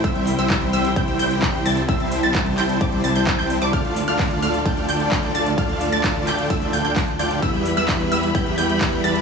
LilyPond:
<<
  \new Staff \with { instrumentName = "Synth pluck" } { \time 4/4 \key c \major \tempo 4 = 130 e'''8 r16 e'''8. e'''16 r16 g'''8 g'''4 a'''16 r16 | e'''8. a'''8. g'''8 d'''8 a'''16 g'''8 g'''8 d'''16 | f'''8 r16 f'''8. f'''16 r16 g'''8 g'''4 a'''16 r16 | f'''8. a'''8. g'''8 e'''8 g'''16 g'''16 r8 g'''8 |
e'''8 r16 e'''8. e'''16 r16 g'''8 g'''4 a'''16 r16 | }
  \new Staff \with { instrumentName = "String section" } { \time 4/4 \key c \major << { g''1 | a''1~ | a''1~ | a''1 |
b''1 | } \\ { <e' g' c''>1~ | <e' g' c''>1 | <f' a' d''>1~ | <f' a' d''>1 |
<g' b' e''>1 | } >> }
  \new Staff \with { instrumentName = "Supersaw synth" } { \time 4/4 \key c \major <g c' e' c'' e''>8 r16 <g c' e' c'' e''>8. <g c' e' c'' e''>16 r16 <g c' e' c'' g''>8 <g c' e' c'' g''>4 <g c' e' c'' a''>16 r16 | <g c' e' c'' e''>8. <g c' e' c'' a''>8. <g c' e' c'' g''>8 <g c' e' c'' d''>8 <g c' e' c'' a''>16 <g c' e' c'' g''>8 <g c' e' c'' g''>8 <g c' e' c'' d''>16 | <a d' f' d'' f''>8 r16 <a d' f' d'' f''>8. <a d' f' d'' f''>16 r16 <a d' f' d'' g''>8 <a d' f' d'' g''>4 <a d' f' d'' a''>16 r16 | <a d' f' d'' f''>8. <a d' f' d'' a''>8. <a d' f' d'' g''>8 <a d' f' d'' e''>8 <a d' f' d'' g''>16 <a d' f' d'' g''>16 r8 <a d' f' d'' g''>8 |
<g b e' b' e''>8 r16 <g b e' b' e''>8. <g b e' b' e''>16 r16 <g b e' b' g''>8 <g b e' b' g''>4 <g b e' b' a''>16 r16 | }
  \new Staff \with { instrumentName = "Detuned saw bass" } { \clef bass \time 4/4 \key c \major c,8. c,8. c,8 c,8 c,4 c,8 | c,8. c,8. c,8 c,8 c,16 c,8 c,8 c,16 | d,8. d,8. d,8 d,8 d,4 d,8 | r8. d,8. d,8 d,8 d,16 d,8. d,8 |
e,8. e,8. e,8 e,8 e,4 e,8 | }
  \new DrumStaff \with { instrumentName = "Drums" } \drummode { \time 4/4 <hh bd>16 hh16 hho16 hh16 <hc hh bd>16 hh16 hho16 hh16 <hh bd>16 hh16 hho16 hh16 <hc hh bd>16 hh16 hho16 hh16 | <hh bd>16 hh16 hho16 hh16 <hc hh bd>16 hh16 <hc hho>16 hh16 <hh bd>16 hh16 hho16 hh16 <hc hh bd>16 hh16 hho16 hh16 | <hh bd cymr>16 hh16 hho16 hh16 <hc hh bd cymr>16 hh16 hho16 hh16 <hh bd cymr>16 hh16 hho16 hh16 <hc hh bd cymr>16 hh16 hho16 hh16 | <hh bd cymr>16 hh16 hho16 hh16 <hc hh bd cymr>16 hh16 <hc hho>16 hh16 <hh bd cymr>16 hh16 hho16 hh16 <hc hh bd cymr>16 hh16 hho16 hh16 |
<hh bd cymr>16 hh16 hho16 hh16 <hc hh bd cymr>16 hh16 hho16 hh16 <hh bd cymr>16 hh16 hho16 hh16 <hc hh bd cymr>16 hh16 hho16 hh16 | }
>>